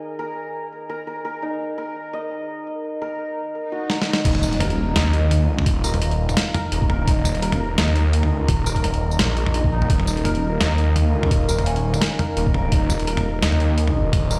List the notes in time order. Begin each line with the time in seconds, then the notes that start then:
Already playing: D#4 A#4 D#5 G#5
0.19 A#4
0.89 A#4
1.07 A#4
1.25 A#4
1.42 D#4
1.78 A#4
2.13 D#5
3.02 A#4
3.54 swell
3.72 F#4
3.90 D#4, snare
4.02 snare
4.08 D#4
4.13 snare
4.25 D#1 D#4 A#4 F5, kick, closed hi-hat, crash, impact
4.35 mid tom
4.43 tambourine
4.53 closed hi-hat
4.60 A#4, closed hi-hat, mid tom
4.70 closed hi-hat
4.95 D#2 D#5, snare, closed hi-hat, mid tom
5.13 closed hi-hat
5.31 closed hi-hat, mid tom
5.44 D2
5.59 mid tom
5.66 D#1, kick, closed hi-hat
5.84 A#4, tambourine
5.94 closed hi-hat, mid tom
6.02 closed hi-hat
6.11 closed hi-hat
6.29 mid tom, tambourine
6.37 snare, closed hi-hat
6.54 A#4, closed hi-hat, mid tom
6.72 D#1 A#4, closed hi-hat
6.82 kick
6.90 A#4, mid tom
7.07 D#1 D#4 A#5, kick, closed hi-hat
7.25 mid tom, tambourine
7.35 closed hi-hat
7.42 A#4, closed hi-hat
7.52 closed hi-hat, mid tom
7.78 D#2 D#5, snare, closed hi-hat
7.88 mid tom
7.96 closed hi-hat
8.13 closed hi-hat
8.23 D2, mid tom
8.48 D#1, kick, closed hi-hat, mid tom
8.66 A#4, tambourine
8.76 kick, closed hi-hat
8.84 closed hi-hat, mid tom
8.94 closed hi-hat
9.11 tambourine
9.19 A#1, snare, closed hi-hat, mid tom
9.37 D#5, closed hi-hat
9.46 mid tom
9.54 D#5, closed hi-hat
9.64 kick
9.72 D#4
9.82 mid tom
9.90 D#1 D#4 F5, kick, closed hi-hat
10.00 mid tom
10.07 tambourine
10.17 closed hi-hat
10.25 A#4, closed hi-hat, mid tom
10.35 closed hi-hat
10.60 D#2 D#5, snare, closed hi-hat, mid tom
10.78 closed hi-hat
10.96 closed hi-hat, mid tom
11.09 D2
11.23 mid tom
11.31 D#1, kick, closed hi-hat
11.49 A#4, tambourine
11.59 closed hi-hat, mid tom
11.66 C#4, closed hi-hat
11.76 closed hi-hat
11.94 mid tom, tambourine
12.02 snare, closed hi-hat
12.19 A#4, closed hi-hat, mid tom
12.37 D#1 A#4, closed hi-hat
12.47 kick
12.54 A#4, mid tom
12.72 D#1 D#4 D#5, kick, closed hi-hat
12.90 mid tom, tambourine
13.00 closed hi-hat
13.07 A#4, closed hi-hat
13.17 closed hi-hat, mid tom
13.43 D#2 D#5, snare, closed hi-hat
13.52 mid tom
13.60 closed hi-hat
13.78 closed hi-hat
13.88 mid tom
14.13 D#1, kick, closed hi-hat, mid tom
14.31 A#4, tambourine